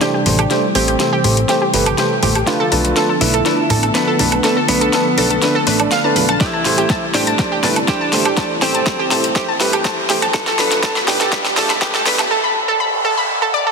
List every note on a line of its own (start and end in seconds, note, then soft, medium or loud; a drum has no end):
0.00 2.43 C3 medium
0.00 2.43 E3 medium
0.00 2.43 G3 medium
0.00 0.49 A3 medium
0.00 0.13 A3 medium
0.00 0.66 D4 medium
0.00 2.43 E4 medium
0.00 0.13 G4 medium
0.00 0.10 G4 loud
0.00 0.13 C5 medium
0.00 snare medium
0.00 closed hi-hat medium
0.14 0.22 G4 medium
0.26 0.46 A1 loud
0.26 0.38 A3 medium
0.26 0.38 G4 medium
0.26 0.38 C5 loud
0.26 open hi-hat loud
0.26 high conga medium
0.39 0.46 G4 loud
0.39 closed hi-hat medium
0.39 high woodblock medium
0.51 0.62 A3 medium
0.51 0.62 G4 medium
0.51 0.59 G4 medium
0.51 0.62 C5 loud
0.51 snare medium
0.51 closed hi-hat medium
0.75 0.95 A1 medium
0.75 0.93 A3 medium
0.75 1.64 C4 medium
0.75 0.93 G4 medium
0.75 0.83 G4 loud
0.75 0.93 C5 loud
0.75 open hi-hat loud
0.88 0.96 G4 medium
0.88 closed hi-hat medium
1.00 1.11 A3 medium
1.00 1.11 G4 medium
1.00 1.11 C5 medium
1.00 snare medium
1.00 closed hi-hat medium
1.13 1.20 G4 loud
1.24 1.45 A1 loud
1.24 1.36 A3 medium
1.24 1.36 G4 medium
1.24 1.33 G4 medium
1.24 1.36 C5 medium
1.24 open hi-hat loud
1.37 closed hi-hat medium
1.49 1.61 A3 medium
1.49 1.61 G4 medium
1.49 1.57 G4 loud
1.49 1.61 C5 medium
1.49 snare medium
1.49 closed hi-hat medium
1.62 1.69 G4 medium
1.73 1.94 G1 medium
1.73 1.85 A3 loud
1.73 1.85 G4 medium
1.73 1.85 B4 loud
1.73 open hi-hat loud
1.86 1.94 G4 loud
1.86 closed hi-hat medium
1.86 high woodblock medium
1.98 2.10 A3 medium
1.98 2.10 G4 medium
1.98 2.06 G4 medium
1.98 2.10 C5 medium
1.98 snare medium
1.98 closed hi-hat medium
2.23 2.43 A1 loud
2.23 2.34 A3 medium
2.23 2.34 G4 medium
2.23 2.31 G4 loud
2.23 2.34 C5 loud
2.23 open hi-hat loud
2.23 high conga medium
2.35 2.43 G4 medium
2.35 closed hi-hat medium
2.35 high woodblock medium
2.47 6.37 D3 medium
2.47 6.37 F3 medium
2.47 2.59 A3 medium
2.47 2.59 D4 medium
2.47 3.12 F4 loud
2.47 2.59 B4 loud
2.47 snare medium
2.47 closed hi-hat soft
2.60 2.68 A4 loud
2.72 2.92 B1 loud
2.72 2.90 A3 medium
2.72 2.90 D4 medium
2.72 2.80 A4 medium
2.72 2.90 B4 loud
2.72 open hi-hat loud
2.85 closed hi-hat medium
2.96 3.08 A3 medium
2.96 3.08 D4 medium
2.96 3.05 A4 loud
2.96 3.08 B4 medium
2.96 snare medium
2.96 closed hi-hat medium
3.09 3.17 A4 medium
3.21 3.41 B1 loud
3.21 3.33 A3 medium
3.21 3.33 D4 medium
3.21 3.85 E4 medium
3.21 3.33 B4 loud
3.21 open hi-hat loud
3.34 3.41 A4 loud
3.34 closed hi-hat medium
3.46 3.57 A3 medium
3.46 3.57 D4 medium
3.46 3.54 A4 medium
3.46 3.57 B4 medium
3.46 snare medium
3.46 closed hi-hat soft
3.70 3.91 A1 medium
3.70 3.82 A3 medium
3.70 3.82 D4 medium
3.70 3.82 A4 loud
3.70 3.79 A4 loud
3.70 open hi-hat loud
3.70 low conga medium
3.83 3.91 A4 medium
3.83 closed hi-hat medium
3.83 high woodblock medium
3.95 4.06 A3 medium
3.95 4.59 B3 medium
3.95 4.06 D4 medium
3.95 4.06 B4 loud
3.95 snare medium
3.95 closed hi-hat medium
4.07 4.15 A4 loud
4.19 4.40 B1 loud
4.19 4.31 A3 medium
4.19 4.31 D4 medium
4.19 4.28 A4 medium
4.19 4.31 B4 medium
4.19 open hi-hat loud
4.19 high conga medium
4.32 closed hi-hat medium
4.32 high woodblock medium
4.44 4.56 A3 medium
4.44 4.56 D4 medium
4.44 4.52 A4 loud
4.44 4.56 B4 loud
4.44 snare medium
4.44 closed hi-hat medium
4.57 4.64 A4 medium
4.68 4.89 B1 medium
4.68 4.87 A3 loud
4.68 5.58 B3 medium
4.68 4.87 D4 medium
4.68 4.87 B4 loud
4.68 open hi-hat loud
4.81 4.89 A4 loud
4.81 closed hi-hat medium
4.93 5.05 A3 medium
4.93 5.05 D4 medium
4.93 5.01 A4 medium
4.93 5.05 B4 medium
4.93 snare medium
4.93 closed hi-hat medium
5.18 5.38 B1 loud
5.18 5.29 A3 medium
5.18 5.29 D4 medium
5.18 5.26 A4 loud
5.18 5.29 B4 medium
5.18 open hi-hat loud
5.31 5.38 A4 medium
5.31 closed hi-hat medium
5.42 5.54 A3 medium
5.42 5.54 D4 medium
5.42 5.54 B4 loud
5.42 snare medium
5.42 closed hi-hat soft
5.55 5.63 A4 loud
5.67 5.87 A1 medium
5.67 5.78 A3 medium
5.67 5.78 D4 medium
5.67 5.78 B4 loud
5.67 5.72 B4 medium
5.67 open hi-hat loud
5.80 5.90 A3 medium
5.80 5.90 D4 medium
5.80 5.90 D5 loud
5.80 closed hi-hat medium
5.80 high woodblock medium
5.91 6.00 F5 loud
5.91 snare medium
5.91 closed hi-hat medium
6.04 6.13 A3 medium
6.04 6.13 D4 medium
6.04 6.13 B4 medium
6.04 6.12 A5 medium
6.16 6.36 B1 loud
6.16 6.28 A3 medium
6.16 6.28 D4 medium
6.16 6.28 B4 medium
6.16 open hi-hat loud
6.16 high conga medium
6.29 6.36 A5 loud
6.29 closed hi-hat medium
6.29 high woodblock medium
6.41 10.30 C3 medium
6.41 10.30 E3 medium
6.41 10.30 G3 medium
6.41 6.52 A3 medium
6.41 7.05 E4 loud
6.41 6.49 G4 loud
6.41 6.52 G4 medium
6.41 6.52 C5 loud
6.41 kick loud
6.41 snare medium
6.41 closed hi-hat medium
6.41 riser medium
6.53 6.58 A5 medium
6.65 6.86 A1 loud
6.65 6.84 A3 medium
6.65 6.84 G4 medium
6.65 6.84 C5 loud
6.65 snare medium
6.65 open hi-hat loud
6.78 6.86 G4 loud
6.78 closed hi-hat medium
6.90 6.95 A5 medium
6.90 kick loud
6.90 snare medium
6.90 closed hi-hat medium
7.14 7.35 A1 loud
7.14 7.26 A3 medium
7.14 7.79 D4 loud
7.14 7.26 G4 medium
7.14 7.23 G4 loud
7.14 7.26 C5 medium
7.14 snare medium
7.14 open hi-hat loud
7.27 7.32 A5 medium
7.27 closed hi-hat medium
7.39 7.51 A3 medium
7.39 7.51 G4 medium
7.39 7.51 C5 medium
7.39 kick loud
7.39 snare medium
7.39 closed hi-hat medium
7.52 7.59 G4 loud
7.63 7.84 G1 medium
7.63 7.75 A3 medium
7.63 7.75 G4 medium
7.63 7.75 B4 loud
7.63 7.69 A5 medium
7.63 snare medium
7.63 open hi-hat loud
7.63 low conga medium
7.76 closed hi-hat medium
7.76 high woodblock medium
7.88 8.00 A3 medium
7.88 8.53 D4 medium
7.88 8.00 G4 medium
7.88 7.97 G4 loud
7.88 8.00 C5 loud
7.88 kick loud
7.88 snare medium
7.88 closed hi-hat medium
8.01 8.06 A5 medium
8.12 8.33 A1 loud
8.12 8.24 A3 medium
8.12 8.24 G4 medium
8.12 8.24 C5 loud
8.12 snare medium
8.12 open hi-hat loud
8.12 high conga medium
8.25 8.33 G4 loud
8.25 closed hi-hat medium
8.25 high woodblock medium
8.37 8.49 A3 medium
8.37 8.49 G4 medium
8.37 8.49 C5 loud
8.37 8.42 A5 medium
8.37 kick loud
8.37 snare medium
8.37 closed hi-hat medium
8.62 8.82 A1 loud
8.62 8.80 A3 loud
8.62 9.51 C4 medium
8.62 8.70 G4 loud
8.62 8.80 G4 medium
8.62 8.80 C5 loud
8.62 snare medium
8.62 open hi-hat loud
8.75 8.79 A5 medium
8.75 closed hi-hat medium
8.86 kick loud
8.86 snare medium
8.86 closed hi-hat medium
8.99 9.07 G4 loud
9.11 9.31 A1 loud
9.11 9.23 A3 medium
9.11 9.23 G4 medium
9.11 9.23 C5 loud
9.11 9.16 A5 medium
9.11 snare medium
9.11 open hi-hat loud
9.24 closed hi-hat medium
9.36 9.47 A3 medium
9.36 9.47 G4 medium
9.36 9.44 G4 loud
9.36 9.47 C5 loud
9.36 kick loud
9.36 snare medium
9.36 closed hi-hat soft
9.48 9.53 A5 medium
9.60 9.81 G1 medium
9.60 9.72 A3 loud
9.60 9.72 G4 medium
9.60 9.72 B4 loud
9.60 snare medium
9.60 open hi-hat loud
9.73 9.81 G4 loud
9.73 closed hi-hat medium
9.73 high woodblock medium
9.85 9.97 A3 medium
9.85 9.97 G4 medium
9.85 9.97 C5 loud
9.85 9.90 A5 medium
9.85 kick loud
9.85 snare medium
9.85 closed hi-hat medium
10.09 10.30 A1 loud
10.09 10.21 A3 medium
10.09 10.21 G4 medium
10.09 10.18 G4 loud
10.09 10.21 C5 loud
10.09 snare medium
10.09 open hi-hat loud
10.09 high conga medium
10.22 10.27 A5 medium
10.22 closed hi-hat medium
10.22 high woodblock medium
10.34 10.46 A3 medium
10.34 10.46 D4 medium
10.34 10.98 A4 loud
10.34 10.46 B4 loud
10.34 kick loud
10.34 snare medium
10.34 closed hi-hat medium
10.47 10.55 A4 loud
10.47 snare medium
10.59 10.79 B1 loud
10.59 10.77 A3 loud
10.59 10.77 D4 medium
10.59 10.77 B4 loud
10.59 10.64 B5 medium
10.59 snare medium
10.59 open hi-hat loud
10.71 snare medium
10.71 closed hi-hat medium
10.83 10.95 A3 medium
10.83 10.92 A4 loud
10.83 kick loud
10.83 snare medium
10.83 closed hi-hat medium
10.96 11.01 B5 medium
10.96 snare medium
11.08 11.28 B1 loud
11.08 11.20 A3 medium
11.08 11.20 D4 medium
11.08 11.72 G4 loud
11.08 11.20 B4 medium
11.08 snare loud
11.08 open hi-hat loud
11.21 11.28 A4 loud
11.21 snare medium
11.21 closed hi-hat medium
11.32 11.44 A3 medium
11.32 11.44 D4 medium
11.32 11.44 B4 loud
11.32 11.37 B5 medium
11.32 kick loud
11.32 snare medium
11.32 closed hi-hat medium
11.45 snare medium
11.57 11.77 A1 medium
11.57 11.69 A3 loud
11.57 11.69 D4 medium
11.57 11.65 A4 loud
11.57 11.69 A4 loud
11.57 snare loud
11.57 open hi-hat loud
11.57 low conga medium
11.70 11.74 B5 medium
11.70 snare medium
11.70 closed hi-hat medium
11.70 high woodblock medium
11.82 11.93 A3 medium
11.82 11.93 D4 medium
11.82 12.31 G4 medium
11.82 11.93 B4 loud
11.82 kick loud
11.82 snare loud
11.82 closed hi-hat medium
11.94 12.02 A4 loud
11.94 snare medium
12.06 12.27 B1 loud
12.06 12.18 A3 medium
12.06 12.18 D4 medium
12.06 12.18 B4 loud
12.06 12.11 B5 medium
12.06 snare loud
12.06 open hi-hat loud
12.06 high conga medium
12.19 snare medium
12.19 closed hi-hat medium
12.19 high woodblock medium
12.31 12.39 A4 loud
12.31 noise sweep medium
12.44 12.48 B5 medium
12.68 12.76 A4 loud
12.80 12.85 B5 medium
13.05 13.13 A4 loud
13.18 13.22 B5 medium
13.42 13.50 A4 loud
13.54 13.66 D5 loud
13.67 13.71 A4 medium